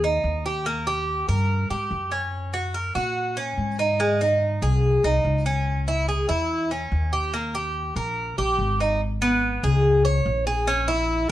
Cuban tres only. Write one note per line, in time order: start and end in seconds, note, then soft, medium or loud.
0.04 0.44 D#4 medium
0.46 0.65 G4 medium
0.66 0.86 A#3 medium
0.87 1.27 G4 medium
1.29 1.69 A#4 medium
1.70 2.11 G4 medium
2.12 2.52 C#4 medium
2.54 2.74 F#4 medium
2.74 2.95 A#4 medium
2.95 3.36 F#4 medium
3.37 3.78 C#4 medium
3.79 3.99 D#4 medium
4.00 4.20 G#3 medium
4.21 4.61 D#4 medium
4.62 5.03 G#4 medium
5.04 5.45 D#4 medium
5.46 5.87 C#4 medium
5.88 6.08 E4 medium
6.09 6.28 G#4 medium
6.29 6.70 E4 medium
6.71 7.12 C#4 medium
7.13 7.33 G4 medium
7.34 7.54 A#3 medium
7.55 7.95 G4 medium
7.96 8.37 A#4 medium
8.38 8.79 G4 medium
8.80 9.00 D#4 medium
9.22 9.62 B3 medium
9.64 10.04 G#4 medium
10.05 10.45 C#5 medium
10.47 10.67 G#4 medium
10.67 10.88 C#4 medium
10.88 11.28 E4 medium